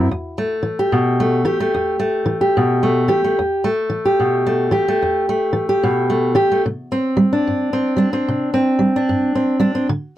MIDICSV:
0, 0, Header, 1, 2, 480
1, 0, Start_track
1, 0, Key_signature, 1, "minor"
1, 0, Tempo, 816327
1, 66, Time_signature, 4, 2, 24, 8
1, 5982, End_track
2, 0, Start_track
2, 0, Title_t, "Steel-string acoustic guitar"
2, 0, Program_c, 0, 25
2, 0, Note_on_c, 0, 42, 58
2, 64, Note_off_c, 0, 42, 0
2, 224, Note_on_c, 0, 57, 47
2, 368, Note_on_c, 0, 52, 59
2, 465, Note_on_c, 0, 67, 52
2, 542, Note_on_c, 0, 47, 61
2, 699, Note_off_c, 0, 57, 0
2, 706, Note_on_c, 0, 57, 57
2, 787, Note_off_c, 0, 52, 0
2, 845, Note_off_c, 0, 47, 0
2, 851, Note_on_c, 0, 52, 65
2, 853, Note_off_c, 0, 67, 0
2, 855, Note_on_c, 0, 67, 58
2, 936, Note_off_c, 0, 57, 0
2, 943, Note_on_c, 0, 57, 53
2, 1026, Note_on_c, 0, 40, 73
2, 1166, Note_off_c, 0, 57, 0
2, 1173, Note_on_c, 0, 57, 51
2, 1269, Note_off_c, 0, 52, 0
2, 1327, Note_on_c, 0, 52, 64
2, 1415, Note_off_c, 0, 67, 0
2, 1417, Note_on_c, 0, 67, 48
2, 1470, Note_off_c, 0, 40, 0
2, 1510, Note_on_c, 0, 47, 70
2, 1655, Note_off_c, 0, 57, 0
2, 1663, Note_on_c, 0, 57, 48
2, 1747, Note_off_c, 0, 52, 0
2, 1809, Note_off_c, 0, 47, 0
2, 1812, Note_off_c, 0, 67, 0
2, 1812, Note_on_c, 0, 52, 63
2, 1815, Note_on_c, 0, 67, 55
2, 1900, Note_off_c, 0, 57, 0
2, 1908, Note_on_c, 0, 57, 47
2, 1989, Note_off_c, 0, 52, 0
2, 1992, Note_off_c, 0, 57, 0
2, 1992, Note_on_c, 0, 40, 65
2, 2141, Note_on_c, 0, 57, 53
2, 2159, Note_off_c, 0, 67, 0
2, 2291, Note_on_c, 0, 52, 62
2, 2384, Note_on_c, 0, 67, 52
2, 2433, Note_off_c, 0, 40, 0
2, 2467, Note_on_c, 0, 47, 61
2, 2619, Note_off_c, 0, 57, 0
2, 2625, Note_on_c, 0, 57, 53
2, 2709, Note_off_c, 0, 52, 0
2, 2767, Note_off_c, 0, 47, 0
2, 2770, Note_on_c, 0, 52, 63
2, 2773, Note_off_c, 0, 67, 0
2, 2776, Note_on_c, 0, 67, 57
2, 2861, Note_off_c, 0, 57, 0
2, 2871, Note_on_c, 0, 57, 54
2, 2954, Note_on_c, 0, 40, 69
2, 3104, Note_off_c, 0, 57, 0
2, 3111, Note_on_c, 0, 57, 55
2, 3188, Note_off_c, 0, 52, 0
2, 3250, Note_on_c, 0, 52, 60
2, 3338, Note_off_c, 0, 67, 0
2, 3345, Note_on_c, 0, 67, 56
2, 3394, Note_off_c, 0, 40, 0
2, 3431, Note_on_c, 0, 47, 66
2, 3578, Note_off_c, 0, 57, 0
2, 3585, Note_on_c, 0, 57, 52
2, 3668, Note_off_c, 0, 52, 0
2, 3729, Note_off_c, 0, 47, 0
2, 3730, Note_off_c, 0, 67, 0
2, 3732, Note_on_c, 0, 52, 64
2, 3737, Note_on_c, 0, 67, 64
2, 3821, Note_off_c, 0, 57, 0
2, 3831, Note_on_c, 0, 57, 46
2, 3889, Note_off_c, 0, 67, 0
2, 3909, Note_off_c, 0, 52, 0
2, 3913, Note_off_c, 0, 57, 0
2, 3914, Note_on_c, 0, 48, 68
2, 4068, Note_on_c, 0, 60, 54
2, 4214, Note_on_c, 0, 55, 66
2, 4308, Note_on_c, 0, 62, 56
2, 4354, Note_off_c, 0, 48, 0
2, 4395, Note_on_c, 0, 43, 57
2, 4538, Note_off_c, 0, 60, 0
2, 4545, Note_on_c, 0, 60, 58
2, 4630, Note_off_c, 0, 55, 0
2, 4684, Note_on_c, 0, 55, 61
2, 4690, Note_off_c, 0, 62, 0
2, 4692, Note_on_c, 0, 62, 58
2, 4773, Note_off_c, 0, 60, 0
2, 4780, Note_on_c, 0, 60, 59
2, 4834, Note_off_c, 0, 43, 0
2, 4871, Note_on_c, 0, 48, 65
2, 5013, Note_off_c, 0, 60, 0
2, 5020, Note_on_c, 0, 60, 56
2, 5104, Note_off_c, 0, 55, 0
2, 5168, Note_on_c, 0, 55, 57
2, 5258, Note_off_c, 0, 62, 0
2, 5269, Note_on_c, 0, 62, 58
2, 5312, Note_off_c, 0, 48, 0
2, 5346, Note_on_c, 0, 43, 69
2, 5493, Note_off_c, 0, 60, 0
2, 5500, Note_on_c, 0, 60, 49
2, 5586, Note_off_c, 0, 55, 0
2, 5638, Note_off_c, 0, 62, 0
2, 5642, Note_on_c, 0, 55, 64
2, 5646, Note_on_c, 0, 62, 62
2, 5726, Note_off_c, 0, 60, 0
2, 5733, Note_on_c, 0, 60, 51
2, 5789, Note_off_c, 0, 43, 0
2, 5801, Note_off_c, 0, 60, 0
2, 5803, Note_off_c, 0, 62, 0
2, 5817, Note_on_c, 0, 50, 75
2, 5823, Note_off_c, 0, 55, 0
2, 5982, Note_off_c, 0, 50, 0
2, 5982, End_track
0, 0, End_of_file